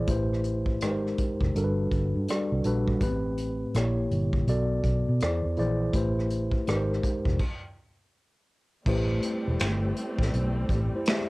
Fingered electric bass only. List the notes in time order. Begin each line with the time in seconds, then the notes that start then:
0.08 A1
0.82 G#1
1.41 F1
1.55 G1
1.92 G1
2.15 G2
2.52 C2
2.65 A#1
3.02 A1
3.75 A#1
4.11 G1
4.47 B1
4.84 B1
5.08 B2
5.22 E2
5.45 E2
5.58 A#1
5.94 A1
6.68 G#1
7.26 F1
8.87 A1
9.48 E1
9.61 G1
10.19 A1
10.34 B1
10.70 A1